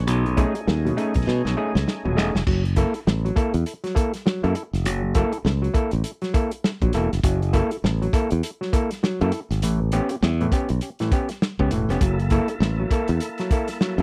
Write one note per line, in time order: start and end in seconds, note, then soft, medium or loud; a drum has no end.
0.00 2.43 C#4 medium
0.07 0.44 B1 loud
0.07 0.24 B2 medium
0.07 0.24 F#3 medium
0.07 2.44 A3 medium
0.07 2.44 D#4 medium
0.07 2.44 G#4 medium
0.07 closed hi-hat loud
0.26 closed hi-hat soft
0.37 0.54 A3 medium
0.37 0.54 C#4 medium
0.37 0.54 D#4 medium
0.37 0.54 G#4 loud
0.37 kick medium
0.37 closed hi-hat medium
0.55 0.60 D#4 soft
0.55 0.60 G#4 soft
0.55 closed hi-hat soft
0.67 0.90 D#2 medium
0.67 0.74 D#4 soft
0.67 0.74 G#4 medium
0.67 snare loud
0.85 0.96 B2 medium
0.85 0.96 F#3 medium
0.85 closed hi-hat soft
0.97 1.14 A3 medium
0.97 1.14 C#4 medium
0.97 1.14 D#4 medium
0.97 1.14 G#4 medium
0.97 closed hi-hat medium
1.14 1.25 B1 medium
1.14 kick medium
1.14 closed hi-hat medium
1.27 1.41 B2 loud
1.27 1.34 D#4 soft
1.27 1.34 G#4 soft
1.27 snare medium
1.45 1.54 B1 medium
1.45 1.56 B2 medium
1.45 1.56 F#3 medium
1.45 snare medium
1.57 1.74 A3 medium
1.57 1.74 C#4 medium
1.57 1.74 D#4 medium
1.57 1.74 G#4 medium
1.75 1.84 C#2 medium
1.75 snare medium
1.87 1.94 D#4 soft
1.87 1.94 G#4 soft
1.87 snare medium
2.05 2.18 D#1 medium
2.05 2.16 B2 medium
2.05 2.16 F#3 medium
2.16 2.31 E1 loud
2.16 2.33 A3 medium
2.16 2.33 C#4 medium
2.16 2.33 D#4 medium
2.16 2.34 G#4 medium
2.16 snare medium
2.35 2.44 F1 medium
2.35 snare medium
2.47 2.83 F#1 medium
2.47 2.64 F#3 medium
2.47 kick loud
2.47 crash loud
2.65 closed hi-hat soft
2.76 2.93 A#3 medium
2.76 2.93 E4 medium
2.76 2.94 A4 loud
2.76 kick medium
2.76 closed hi-hat medium
2.94 2.99 E4 soft
2.94 3.00 A4 medium
2.94 closed hi-hat soft
3.07 3.30 A1 medium
3.07 3.14 E4 soft
3.07 3.14 A4 soft
3.07 snare loud
3.25 3.36 F#3 medium
3.25 closed hi-hat soft
3.36 3.52 A#3 medium
3.36 3.53 E4 medium
3.36 3.53 A4 medium
3.36 kick loud
3.36 closed hi-hat medium
3.54 3.63 E2 medium
3.54 closed hi-hat medium
3.66 3.73 E4 soft
3.66 3.73 A4 soft
3.66 closed hi-hat medium
3.84 3.95 F#3 medium
3.84 snare soft
3.84 closed hi-hat soft
3.95 4.12 A#3 medium
3.95 4.12 E4 medium
3.95 4.12 A4 medium
3.95 kick loud
3.95 closed hi-hat medium
4.14 snare soft
4.14 closed hi-hat medium
4.26 4.42 F#3 medium
4.26 snare loud
4.43 4.53 F#2 medium
4.43 4.54 A#3 medium
4.43 4.55 E4 medium
4.43 4.55 A4 medium
4.43 closed hi-hat soft
4.55 4.63 E4 soft
4.55 4.63 A4 soft
4.55 closed hi-hat medium
4.73 4.86 F1 medium
4.73 snare soft
4.73 closed hi-hat medium
4.85 5.22 F#1 medium
4.85 5.02 F#3 medium
4.85 closed hi-hat loud
5.15 5.32 A#3 loud
5.15 5.32 E4 medium
5.15 5.32 A4 loud
5.15 kick medium
5.15 closed hi-hat medium
5.33 5.38 E4 soft
5.33 5.38 A4 soft
5.33 closed hi-hat medium
5.45 5.68 C#2 medium
5.45 5.52 E4 soft
5.45 5.52 A4 medium
5.45 snare loud
5.62 5.73 F#3 medium
5.62 closed hi-hat soft
5.74 5.91 A#3 medium
5.74 5.91 E4 medium
5.74 5.91 A4 medium
5.74 kick loud
5.74 closed hi-hat medium
5.91 6.02 A1 medium
5.91 closed hi-hat medium
6.04 6.11 E4 soft
6.04 6.11 A4 soft
6.04 closed hi-hat medium
6.22 6.33 F#3 medium
6.22 snare soft
6.22 closed hi-hat soft
6.34 6.51 A#3 medium
6.34 6.51 E4 medium
6.34 6.51 A4 medium
6.34 kick loud
6.34 closed hi-hat medium
6.51 closed hi-hat medium
6.64 6.71 E4 soft
6.64 6.71 A4 soft
6.64 snare loud
6.81 6.91 A#1 loud
6.81 6.93 F#3 medium
6.81 kick medium
6.81 closed hi-hat soft
6.93 7.08 E1 loud
6.93 7.11 A#3 medium
6.93 7.11 E4 medium
6.93 7.11 A4 medium
6.93 closed hi-hat medium
7.13 7.22 F1 loud
7.13 snare soft
7.13 closed hi-hat medium
7.24 7.61 F#1 loud
7.24 7.40 F#3 medium
7.24 kick loud
7.24 closed hi-hat loud
7.42 closed hi-hat soft
7.53 7.70 A#3 loud
7.53 7.70 E4 loud
7.53 7.70 A4 loud
7.53 kick medium
7.53 closed hi-hat medium
7.71 7.76 E4 soft
7.71 7.77 A4 medium
7.71 closed hi-hat soft
7.84 8.07 A1 medium
7.84 7.91 E4 soft
7.84 7.91 A4 soft
7.84 snare loud
8.02 8.13 F#3 medium
8.02 closed hi-hat soft
8.13 8.30 A#3 medium
8.13 8.30 E4 medium
8.13 8.30 A4 medium
8.13 kick loud
8.13 closed hi-hat medium
8.30 8.41 E2 loud
8.30 closed hi-hat medium
8.43 8.50 E4 soft
8.43 8.50 A4 soft
8.43 closed hi-hat loud
8.61 8.72 F#3 medium
8.61 snare soft
8.73 8.90 A#3 medium
8.73 8.90 E4 medium
8.73 8.90 A4 medium
8.73 kick loud
8.73 closed hi-hat medium
8.91 snare soft
8.91 closed hi-hat medium
9.03 9.20 F#3 medium
9.03 snare loud
9.21 9.30 F#2 loud
9.21 9.32 A#3 medium
9.21 9.32 E4 medium
9.21 9.32 A4 medium
9.21 closed hi-hat soft
9.32 9.40 E4 soft
9.32 9.40 A4 soft
9.32 closed hi-hat medium
9.51 9.60 G#1 loud
9.51 snare soft
9.51 closed hi-hat medium
9.62 9.99 A1 loud
9.62 9.80 A2 medium
9.62 9.80 E3 medium
9.62 closed hi-hat loud
9.92 10.09 B3 loud
9.92 10.09 C#4 medium
9.92 10.10 G4 loud
9.92 closed hi-hat medium
10.09 10.15 C#4 soft
10.09 10.15 G4 medium
10.09 closed hi-hat soft
10.23 10.45 E2 loud
10.23 10.30 C#4 soft
10.23 10.30 G4 medium
10.23 snare loud
10.41 10.52 A2 medium
10.41 10.52 E3 medium
10.41 closed hi-hat soft
10.52 10.69 B3 medium
10.52 10.69 C#4 medium
10.52 10.69 G4 medium
10.52 kick loud
10.52 closed hi-hat medium
10.69 10.79 B1 medium
10.69 closed hi-hat medium
10.81 10.89 C#4 soft
10.81 10.89 G4 soft
10.81 closed hi-hat medium
10.99 11.11 A2 medium
10.99 11.11 E3 medium
10.99 snare soft
10.99 closed hi-hat soft
11.12 11.29 B3 medium
11.12 11.29 C#4 medium
11.12 11.29 G4 medium
11.12 kick medium
11.12 closed hi-hat medium
11.29 snare soft
11.29 closed hi-hat medium
11.42 snare loud
11.59 11.69 C#2 loud
11.59 11.71 B3 medium
11.59 11.71 C#4 medium
11.59 11.71 G4 medium
11.59 kick medium
11.71 11.85 E1 medium
11.71 11.89 A2 medium
11.71 11.89 E3 medium
11.71 closed hi-hat medium
11.89 11.98 F1 medium
11.89 12.01 B3 medium
11.89 12.01 C#4 medium
11.89 12.01 G4 medium
11.89 snare soft
11.89 closed hi-hat medium
12.01 12.38 F#1 medium
12.01 12.18 F#3 medium
12.01 14.03 A#3 medium
12.01 14.03 E4 medium
12.01 14.03 A4 medium
12.01 kick loud
12.01 closed hi-hat medium
12.19 closed hi-hat soft
12.30 12.48 A#3 loud
12.30 12.48 E4 loud
12.30 12.48 A4 loud
12.30 kick medium
12.30 closed hi-hat medium
12.48 12.54 E4 soft
12.48 12.54 A4 soft
12.48 closed hi-hat soft
12.60 12.84 A1 loud
12.60 12.68 E4 soft
12.60 12.68 A4 medium
12.60 snare loud
12.79 12.90 F#3 medium
12.91 13.08 A#3 medium
12.91 13.08 E4 medium
12.91 13.08 A4 medium
12.91 kick medium
12.91 closed hi-hat medium
13.08 13.18 E2 loud
13.08 closed hi-hat medium
13.20 13.28 E4 soft
13.20 13.28 A4 soft
13.20 closed hi-hat medium
13.38 13.50 F#3 medium
13.38 snare soft
13.38 closed hi-hat soft
13.51 13.68 A#3 medium
13.51 13.68 E4 medium
13.51 13.68 A4 medium
13.51 kick loud
13.51 closed hi-hat medium
13.68 snare soft
13.68 closed hi-hat medium
13.81 13.98 F#3 medium
13.81 snare medium
13.98 14.03 F#2 medium
13.98 14.03 A#3 medium
13.98 closed hi-hat soft